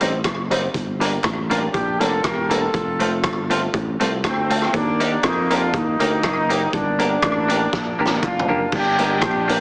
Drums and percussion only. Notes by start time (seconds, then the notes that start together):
0.01 closed hi-hat
0.24 kick, cross-stick, clap, closed hi-hat
0.51 closed hi-hat
0.74 kick, closed hi-hat
1.01 closed hi-hat
1.24 kick, cross-stick, clap, closed hi-hat
1.51 closed hi-hat
1.74 kick, closed hi-hat
2.01 closed hi-hat
2.24 kick, cross-stick, clap, closed hi-hat
2.50 closed hi-hat
2.74 kick, closed hi-hat
3.00 closed hi-hat
3.24 kick, cross-stick, clap, closed hi-hat
3.50 closed hi-hat
3.74 kick, closed hi-hat
4.00 closed hi-hat
4.24 kick, cross-stick, clap, closed hi-hat
4.50 closed hi-hat
4.62 cross-stick
4.74 kick, closed hi-hat
5.00 closed hi-hat
5.24 kick, cross-stick, clap, closed hi-hat
5.50 closed hi-hat
5.74 kick, closed hi-hat
6.00 closed hi-hat
6.24 kick, cross-stick, clap, closed hi-hat
6.50 closed hi-hat
6.73 kick, closed hi-hat
6.99 closed hi-hat
7.23 kick, cross-stick, clap, closed hi-hat
7.50 closed hi-hat
7.73 kick, snare
8.06 snare
8.23 kick, clap, mid tom
8.39 floor tom
8.72 kick, crash
8.99 closed hi-hat
9.22 kick, cross-stick, clap, closed hi-hat
9.49 closed hi-hat